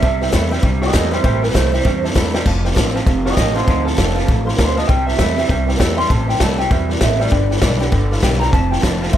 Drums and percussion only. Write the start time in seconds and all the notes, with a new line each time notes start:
0.03 kick, snare
0.22 snare
0.27 snare
0.33 kick, snare, hi-hat pedal
0.52 snare
0.57 snare
0.63 kick, snare
0.82 snare
0.88 snare
0.93 kick, snare, hi-hat pedal
1.12 snare
1.23 kick, snare
1.43 snare
1.49 snare
1.55 kick, snare, hi-hat pedal
1.74 snare
1.80 snare
1.85 kick, snare
2.04 snare
2.10 snare
2.16 kick, snare, hi-hat pedal
2.35 snare
2.46 kick, snare, splash
2.65 snare
2.71 snare
2.76 kick, snare, hi-hat pedal
2.96 snare
3.06 kick, snare
3.26 snare
3.31 snare
3.37 kick, snare, hi-hat pedal
3.56 snare
3.68 kick, snare
3.87 snare
3.93 snare
3.98 kick, snare, hi-hat pedal
4.18 snare
4.28 kick, snare
4.48 snare
4.54 snare
4.59 kick, snare, hi-hat pedal
4.78 snare
4.83 snare
4.89 kick, snare
5.08 snare
5.14 snare
5.19 kick, snare, hi-hat pedal
5.38 snare
5.44 snare
5.49 kick, snare
5.69 snare
5.74 snare
5.80 kick, snare, hi-hat pedal
5.99 snare
6.05 snare
6.10 kick, snare
6.29 snare
6.35 snare
6.40 kick, snare, hi-hat pedal
6.60 snare
6.71 kick, snare
6.90 snare
6.95 snare
7.01 kick, snare, hi-hat pedal
7.20 snare
7.26 snare
7.32 kick, snare
7.51 snare
7.57 snare
7.62 kick, snare, hi-hat pedal
7.81 snare
7.92 kick, snare
8.12 snare
8.18 snare
8.23 kick, snare, hi-hat pedal
8.42 snare
8.53 kick, snare
8.72 snare
8.78 snare
8.83 kick, snare, hi-hat pedal
9.03 snare
9.08 snare
9.14 kick, snare